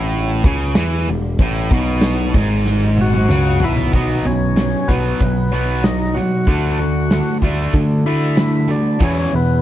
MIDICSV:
0, 0, Header, 1, 6, 480
1, 0, Start_track
1, 0, Tempo, 633580
1, 1064, Time_signature, 4, 2, 24, 8
1, 7286, End_track
2, 0, Start_track
2, 0, Title_t, "Steel-string acoustic guitar"
2, 0, Program_c, 0, 25
2, 2982, Note_on_c, 0, 59, 75
2, 2995, Note_on_c, 0, 63, 82
2, 3000, Note_on_c, 0, 73, 89
2, 3001, Note_on_c, 0, 66, 84
2, 3220, Note_off_c, 0, 73, 0
2, 3221, Note_off_c, 0, 59, 0
2, 3228, Note_off_c, 0, 63, 0
2, 3229, Note_on_c, 0, 73, 53
2, 3231, Note_off_c, 0, 66, 0
2, 3241, Note_on_c, 0, 66, 49
2, 3252, Note_on_c, 0, 63, 44
2, 3465, Note_off_c, 0, 73, 0
2, 3469, Note_off_c, 0, 63, 0
2, 3471, Note_off_c, 0, 66, 0
2, 3476, Note_on_c, 0, 59, 56
2, 3478, Note_on_c, 0, 63, 57
2, 3486, Note_on_c, 0, 66, 58
2, 3495, Note_on_c, 0, 73, 62
2, 3707, Note_off_c, 0, 73, 0
2, 3708, Note_off_c, 0, 59, 0
2, 3709, Note_off_c, 0, 63, 0
2, 3713, Note_off_c, 0, 66, 0
2, 3716, Note_on_c, 0, 73, 51
2, 3728, Note_on_c, 0, 66, 51
2, 3736, Note_on_c, 0, 63, 43
2, 3941, Note_off_c, 0, 63, 0
2, 3943, Note_on_c, 0, 59, 65
2, 3944, Note_off_c, 0, 66, 0
2, 3948, Note_off_c, 0, 73, 0
2, 3951, Note_on_c, 0, 63, 75
2, 3953, Note_on_c, 0, 66, 71
2, 3958, Note_on_c, 0, 73, 76
2, 4167, Note_off_c, 0, 73, 0
2, 4176, Note_on_c, 0, 73, 44
2, 4182, Note_off_c, 0, 59, 0
2, 4183, Note_off_c, 0, 66, 0
2, 4186, Note_off_c, 0, 63, 0
2, 4192, Note_on_c, 0, 66, 42
2, 4198, Note_on_c, 0, 63, 41
2, 4404, Note_off_c, 0, 63, 0
2, 4407, Note_on_c, 0, 59, 59
2, 4410, Note_off_c, 0, 66, 0
2, 4413, Note_on_c, 0, 63, 68
2, 4419, Note_off_c, 0, 73, 0
2, 4419, Note_on_c, 0, 66, 64
2, 4427, Note_on_c, 0, 73, 68
2, 4643, Note_off_c, 0, 73, 0
2, 4652, Note_on_c, 0, 73, 41
2, 4654, Note_off_c, 0, 59, 0
2, 4657, Note_off_c, 0, 63, 0
2, 4658, Note_off_c, 0, 66, 0
2, 4667, Note_on_c, 0, 66, 44
2, 4675, Note_on_c, 0, 63, 44
2, 4886, Note_on_c, 0, 50, 76
2, 4893, Note_off_c, 0, 66, 0
2, 4897, Note_off_c, 0, 73, 0
2, 4898, Note_off_c, 0, 63, 0
2, 4901, Note_on_c, 0, 62, 79
2, 4902, Note_on_c, 0, 66, 82
2, 4908, Note_on_c, 0, 69, 87
2, 5132, Note_off_c, 0, 69, 0
2, 5134, Note_off_c, 0, 50, 0
2, 5141, Note_off_c, 0, 62, 0
2, 5141, Note_on_c, 0, 69, 58
2, 5142, Note_off_c, 0, 66, 0
2, 5152, Note_on_c, 0, 66, 43
2, 5164, Note_on_c, 0, 62, 44
2, 5370, Note_off_c, 0, 62, 0
2, 5375, Note_on_c, 0, 50, 66
2, 5378, Note_off_c, 0, 66, 0
2, 5379, Note_on_c, 0, 62, 65
2, 5382, Note_off_c, 0, 69, 0
2, 5387, Note_on_c, 0, 66, 71
2, 5394, Note_on_c, 0, 69, 81
2, 5604, Note_off_c, 0, 69, 0
2, 5613, Note_on_c, 0, 69, 57
2, 5614, Note_off_c, 0, 66, 0
2, 5619, Note_off_c, 0, 50, 0
2, 5621, Note_off_c, 0, 62, 0
2, 5623, Note_on_c, 0, 66, 48
2, 5633, Note_on_c, 0, 62, 49
2, 5842, Note_off_c, 0, 62, 0
2, 5843, Note_on_c, 0, 50, 85
2, 5848, Note_off_c, 0, 66, 0
2, 5851, Note_off_c, 0, 69, 0
2, 5851, Note_on_c, 0, 62, 77
2, 5857, Note_on_c, 0, 66, 81
2, 5860, Note_on_c, 0, 69, 88
2, 6092, Note_off_c, 0, 69, 0
2, 6093, Note_off_c, 0, 50, 0
2, 6095, Note_off_c, 0, 66, 0
2, 6097, Note_off_c, 0, 62, 0
2, 6101, Note_on_c, 0, 69, 43
2, 6104, Note_on_c, 0, 66, 45
2, 6117, Note_on_c, 0, 62, 40
2, 6342, Note_off_c, 0, 69, 0
2, 6344, Note_off_c, 0, 66, 0
2, 6347, Note_off_c, 0, 62, 0
2, 6349, Note_on_c, 0, 50, 58
2, 6356, Note_on_c, 0, 62, 66
2, 6359, Note_on_c, 0, 66, 60
2, 6365, Note_on_c, 0, 69, 64
2, 6566, Note_off_c, 0, 69, 0
2, 6574, Note_off_c, 0, 66, 0
2, 6575, Note_on_c, 0, 69, 55
2, 6583, Note_on_c, 0, 66, 42
2, 6585, Note_off_c, 0, 62, 0
2, 6586, Note_off_c, 0, 50, 0
2, 6594, Note_on_c, 0, 62, 42
2, 6820, Note_off_c, 0, 69, 0
2, 6822, Note_on_c, 0, 56, 86
2, 6823, Note_on_c, 0, 40, 81
2, 6824, Note_off_c, 0, 66, 0
2, 6824, Note_on_c, 0, 52, 79
2, 6829, Note_off_c, 0, 62, 0
2, 6832, Note_on_c, 0, 61, 81
2, 6833, Note_on_c, 0, 59, 92
2, 6839, Note_on_c, 0, 64, 89
2, 7042, Note_off_c, 0, 64, 0
2, 7049, Note_off_c, 0, 59, 0
2, 7051, Note_on_c, 0, 64, 49
2, 7052, Note_off_c, 0, 61, 0
2, 7058, Note_on_c, 0, 59, 52
2, 7061, Note_on_c, 0, 61, 44
2, 7063, Note_off_c, 0, 56, 0
2, 7064, Note_off_c, 0, 40, 0
2, 7064, Note_off_c, 0, 52, 0
2, 7072, Note_on_c, 0, 56, 39
2, 7286, Note_off_c, 0, 56, 0
2, 7286, Note_off_c, 0, 59, 0
2, 7286, Note_off_c, 0, 61, 0
2, 7286, Note_off_c, 0, 64, 0
2, 7286, End_track
3, 0, Start_track
3, 0, Title_t, "Tonewheel organ"
3, 0, Program_c, 1, 16
3, 2282, Note_on_c, 1, 66, 100
3, 2757, Note_on_c, 1, 64, 103
3, 2765, Note_off_c, 1, 66, 0
3, 2973, Note_off_c, 1, 64, 0
3, 2997, Note_on_c, 1, 63, 96
3, 3231, Note_on_c, 1, 61, 82
3, 3236, Note_off_c, 1, 63, 0
3, 3697, Note_on_c, 1, 59, 80
3, 3720, Note_off_c, 1, 61, 0
3, 4425, Note_on_c, 1, 63, 82
3, 4441, Note_off_c, 1, 59, 0
3, 4656, Note_on_c, 1, 66, 82
3, 4670, Note_off_c, 1, 63, 0
3, 5589, Note_off_c, 1, 66, 0
3, 6107, Note_on_c, 1, 64, 85
3, 6597, Note_on_c, 1, 62, 85
3, 6600, Note_off_c, 1, 64, 0
3, 6837, Note_off_c, 1, 62, 0
3, 6842, Note_on_c, 1, 61, 86
3, 7080, Note_off_c, 1, 61, 0
3, 7088, Note_on_c, 1, 59, 105
3, 7286, Note_off_c, 1, 59, 0
3, 7286, End_track
4, 0, Start_track
4, 0, Title_t, "Distorted electric guitar"
4, 0, Program_c, 2, 30
4, 0, Note_on_c, 2, 45, 98
4, 333, Note_off_c, 2, 45, 0
4, 341, Note_on_c, 2, 49, 108
4, 575, Note_off_c, 2, 49, 0
4, 578, Note_on_c, 2, 52, 108
4, 814, Note_off_c, 2, 52, 0
4, 829, Note_on_c, 2, 40, 74
4, 1018, Note_off_c, 2, 40, 0
4, 1067, Note_on_c, 2, 45, 105
4, 1298, Note_off_c, 2, 45, 0
4, 1307, Note_on_c, 2, 47, 108
4, 1777, Note_off_c, 2, 47, 0
4, 1782, Note_on_c, 2, 44, 100
4, 2494, Note_off_c, 2, 44, 0
4, 2505, Note_on_c, 2, 49, 99
4, 2736, Note_off_c, 2, 49, 0
4, 2743, Note_on_c, 2, 47, 94
4, 2975, Note_off_c, 2, 47, 0
4, 2985, Note_on_c, 2, 47, 73
4, 2991, Note_on_c, 2, 54, 86
4, 2997, Note_on_c, 2, 59, 77
4, 3208, Note_off_c, 2, 47, 0
4, 3211, Note_off_c, 2, 54, 0
4, 3214, Note_off_c, 2, 59, 0
4, 3226, Note_on_c, 2, 47, 75
4, 3229, Note_on_c, 2, 54, 65
4, 3439, Note_off_c, 2, 47, 0
4, 3441, Note_off_c, 2, 54, 0
4, 3459, Note_on_c, 2, 47, 67
4, 3460, Note_on_c, 2, 54, 76
4, 3676, Note_off_c, 2, 47, 0
4, 3677, Note_off_c, 2, 54, 0
4, 3701, Note_on_c, 2, 47, 78
4, 3708, Note_on_c, 2, 54, 91
4, 3713, Note_on_c, 2, 59, 90
4, 3927, Note_off_c, 2, 47, 0
4, 3930, Note_off_c, 2, 54, 0
4, 3932, Note_off_c, 2, 59, 0
4, 3951, Note_on_c, 2, 47, 68
4, 3954, Note_on_c, 2, 54, 77
4, 4162, Note_off_c, 2, 47, 0
4, 4163, Note_off_c, 2, 54, 0
4, 4183, Note_on_c, 2, 47, 88
4, 4190, Note_on_c, 2, 54, 90
4, 4196, Note_on_c, 2, 59, 99
4, 4407, Note_off_c, 2, 47, 0
4, 4411, Note_off_c, 2, 54, 0
4, 4414, Note_off_c, 2, 59, 0
4, 4421, Note_on_c, 2, 47, 65
4, 4423, Note_on_c, 2, 54, 73
4, 4637, Note_off_c, 2, 47, 0
4, 4638, Note_off_c, 2, 54, 0
4, 4666, Note_on_c, 2, 47, 60
4, 4674, Note_on_c, 2, 54, 75
4, 4880, Note_off_c, 2, 47, 0
4, 4884, Note_off_c, 2, 54, 0
4, 4904, Note_on_c, 2, 50, 79
4, 4909, Note_on_c, 2, 57, 77
4, 4914, Note_on_c, 2, 62, 82
4, 5129, Note_off_c, 2, 50, 0
4, 5131, Note_off_c, 2, 57, 0
4, 5133, Note_off_c, 2, 62, 0
4, 5146, Note_on_c, 2, 50, 67
4, 5151, Note_on_c, 2, 57, 71
4, 5360, Note_off_c, 2, 50, 0
4, 5362, Note_off_c, 2, 57, 0
4, 5390, Note_on_c, 2, 50, 72
4, 5394, Note_on_c, 2, 57, 70
4, 5602, Note_off_c, 2, 50, 0
4, 5604, Note_off_c, 2, 57, 0
4, 5622, Note_on_c, 2, 50, 74
4, 5628, Note_on_c, 2, 57, 84
4, 5634, Note_on_c, 2, 62, 95
4, 5848, Note_off_c, 2, 50, 0
4, 5851, Note_off_c, 2, 57, 0
4, 5854, Note_off_c, 2, 62, 0
4, 5868, Note_on_c, 2, 50, 73
4, 5871, Note_on_c, 2, 57, 75
4, 6082, Note_off_c, 2, 50, 0
4, 6083, Note_off_c, 2, 57, 0
4, 6107, Note_on_c, 2, 50, 82
4, 6111, Note_on_c, 2, 57, 96
4, 6116, Note_on_c, 2, 62, 95
4, 6331, Note_off_c, 2, 50, 0
4, 6333, Note_off_c, 2, 57, 0
4, 6335, Note_off_c, 2, 62, 0
4, 6343, Note_on_c, 2, 50, 67
4, 6347, Note_on_c, 2, 57, 75
4, 6559, Note_off_c, 2, 50, 0
4, 6562, Note_off_c, 2, 57, 0
4, 6576, Note_on_c, 2, 50, 70
4, 6578, Note_on_c, 2, 57, 71
4, 6796, Note_off_c, 2, 50, 0
4, 6797, Note_off_c, 2, 57, 0
4, 6810, Note_on_c, 2, 40, 83
4, 6815, Note_on_c, 2, 47, 91
4, 6822, Note_on_c, 2, 52, 96
4, 7040, Note_off_c, 2, 40, 0
4, 7041, Note_off_c, 2, 47, 0
4, 7049, Note_off_c, 2, 52, 0
4, 7049, Note_on_c, 2, 40, 71
4, 7051, Note_on_c, 2, 47, 85
4, 7273, Note_off_c, 2, 40, 0
4, 7274, Note_off_c, 2, 47, 0
4, 7286, End_track
5, 0, Start_track
5, 0, Title_t, "Picked electric bass"
5, 0, Program_c, 3, 34
5, 0, Note_on_c, 3, 33, 83
5, 310, Note_off_c, 3, 33, 0
5, 332, Note_on_c, 3, 37, 103
5, 561, Note_off_c, 3, 37, 0
5, 584, Note_on_c, 3, 40, 105
5, 807, Note_off_c, 3, 40, 0
5, 824, Note_on_c, 3, 28, 88
5, 1046, Note_off_c, 3, 28, 0
5, 1052, Note_on_c, 3, 33, 106
5, 1280, Note_off_c, 3, 33, 0
5, 1295, Note_on_c, 3, 35, 106
5, 1748, Note_off_c, 3, 35, 0
5, 1771, Note_on_c, 3, 32, 90
5, 2466, Note_off_c, 3, 32, 0
5, 2493, Note_on_c, 3, 37, 103
5, 2720, Note_off_c, 3, 37, 0
5, 2730, Note_on_c, 3, 35, 97
5, 2958, Note_off_c, 3, 35, 0
5, 2980, Note_on_c, 3, 35, 108
5, 3165, Note_off_c, 3, 35, 0
5, 3221, Note_on_c, 3, 35, 81
5, 3590, Note_off_c, 3, 35, 0
5, 3700, Note_on_c, 3, 35, 78
5, 3885, Note_off_c, 3, 35, 0
5, 3946, Note_on_c, 3, 35, 89
5, 4682, Note_off_c, 3, 35, 0
5, 4905, Note_on_c, 3, 38, 92
5, 5458, Note_off_c, 3, 38, 0
5, 5622, Note_on_c, 3, 38, 83
5, 5807, Note_off_c, 3, 38, 0
5, 5862, Note_on_c, 3, 50, 83
5, 6601, Note_off_c, 3, 50, 0
5, 6826, Note_on_c, 3, 40, 116
5, 7010, Note_off_c, 3, 40, 0
5, 7077, Note_on_c, 3, 40, 97
5, 7286, Note_off_c, 3, 40, 0
5, 7286, End_track
6, 0, Start_track
6, 0, Title_t, "Drums"
6, 93, Note_on_c, 9, 46, 81
6, 169, Note_off_c, 9, 46, 0
6, 333, Note_on_c, 9, 46, 60
6, 335, Note_on_c, 9, 36, 95
6, 409, Note_off_c, 9, 46, 0
6, 411, Note_off_c, 9, 36, 0
6, 567, Note_on_c, 9, 46, 73
6, 569, Note_on_c, 9, 38, 113
6, 571, Note_on_c, 9, 54, 94
6, 643, Note_off_c, 9, 46, 0
6, 645, Note_off_c, 9, 38, 0
6, 646, Note_off_c, 9, 54, 0
6, 814, Note_on_c, 9, 46, 55
6, 890, Note_off_c, 9, 46, 0
6, 1050, Note_on_c, 9, 46, 72
6, 1054, Note_on_c, 9, 36, 98
6, 1126, Note_off_c, 9, 46, 0
6, 1129, Note_off_c, 9, 36, 0
6, 1285, Note_on_c, 9, 46, 58
6, 1294, Note_on_c, 9, 36, 110
6, 1361, Note_off_c, 9, 46, 0
6, 1370, Note_off_c, 9, 36, 0
6, 1524, Note_on_c, 9, 46, 77
6, 1526, Note_on_c, 9, 38, 108
6, 1543, Note_on_c, 9, 54, 89
6, 1600, Note_off_c, 9, 46, 0
6, 1602, Note_off_c, 9, 38, 0
6, 1619, Note_off_c, 9, 54, 0
6, 1775, Note_on_c, 9, 36, 106
6, 1775, Note_on_c, 9, 46, 59
6, 1851, Note_off_c, 9, 36, 0
6, 1851, Note_off_c, 9, 46, 0
6, 2011, Note_on_c, 9, 38, 55
6, 2087, Note_off_c, 9, 38, 0
6, 2253, Note_on_c, 9, 48, 67
6, 2329, Note_off_c, 9, 48, 0
6, 2375, Note_on_c, 9, 48, 69
6, 2451, Note_off_c, 9, 48, 0
6, 2492, Note_on_c, 9, 47, 81
6, 2504, Note_on_c, 9, 54, 99
6, 2568, Note_off_c, 9, 47, 0
6, 2580, Note_off_c, 9, 54, 0
6, 2728, Note_on_c, 9, 43, 93
6, 2804, Note_off_c, 9, 43, 0
6, 2855, Note_on_c, 9, 43, 87
6, 2930, Note_off_c, 9, 43, 0
6, 2976, Note_on_c, 9, 46, 46
6, 2980, Note_on_c, 9, 36, 91
6, 3052, Note_off_c, 9, 46, 0
6, 3056, Note_off_c, 9, 36, 0
6, 3462, Note_on_c, 9, 46, 53
6, 3465, Note_on_c, 9, 38, 98
6, 3538, Note_off_c, 9, 46, 0
6, 3540, Note_off_c, 9, 38, 0
6, 3703, Note_on_c, 9, 36, 81
6, 3779, Note_off_c, 9, 36, 0
6, 3942, Note_on_c, 9, 46, 48
6, 3944, Note_on_c, 9, 36, 90
6, 4018, Note_off_c, 9, 46, 0
6, 4019, Note_off_c, 9, 36, 0
6, 4422, Note_on_c, 9, 46, 49
6, 4424, Note_on_c, 9, 38, 105
6, 4498, Note_off_c, 9, 46, 0
6, 4500, Note_off_c, 9, 38, 0
6, 4901, Note_on_c, 9, 46, 47
6, 4902, Note_on_c, 9, 36, 94
6, 4977, Note_off_c, 9, 46, 0
6, 4978, Note_off_c, 9, 36, 0
6, 5383, Note_on_c, 9, 46, 49
6, 5386, Note_on_c, 9, 38, 103
6, 5459, Note_off_c, 9, 46, 0
6, 5461, Note_off_c, 9, 38, 0
6, 5621, Note_on_c, 9, 36, 80
6, 5697, Note_off_c, 9, 36, 0
6, 5859, Note_on_c, 9, 46, 42
6, 5861, Note_on_c, 9, 36, 102
6, 5935, Note_off_c, 9, 46, 0
6, 5937, Note_off_c, 9, 36, 0
6, 6341, Note_on_c, 9, 46, 43
6, 6343, Note_on_c, 9, 38, 106
6, 6417, Note_off_c, 9, 46, 0
6, 6419, Note_off_c, 9, 38, 0
6, 6823, Note_on_c, 9, 36, 112
6, 6825, Note_on_c, 9, 46, 50
6, 6898, Note_off_c, 9, 36, 0
6, 6901, Note_off_c, 9, 46, 0
6, 7286, End_track
0, 0, End_of_file